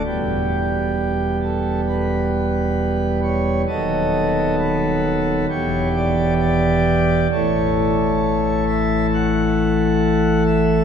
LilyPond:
<<
  \new Staff \with { instrumentName = "Pipe organ" } { \time 4/4 \key e \dorian \tempo 4 = 66 g'4. a'8 b'4. cis''8 | dis''4 b'4 cis''8 d''8 d''4 | cis''4. e''8 fis''4. e''8 | }
  \new Staff \with { instrumentName = "Pipe organ" } { \clef bass \time 4/4 \key e \dorian <e,, e, g b>1 | <dis,, dis, fis b a'>2 <e,, e, e b g'>2 | <a,, a, e a a'>1 | }
>>